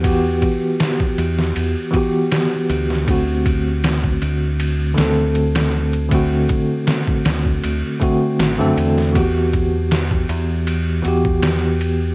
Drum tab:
RD |x-x-x-x-x-x-x-x-|x-x-x-x-x-x-xx-x|x-x-x-x-x-x-x-x-|x-x-x-x-x-x-x-x-|
SD |----o--o----o--o|----o-----o--o--|----o-o-----o--o|----o-------o---|
BD |o-o--o----o-----|o-o--o----------|o-o--o-o--o-----|o-o--o-----o----|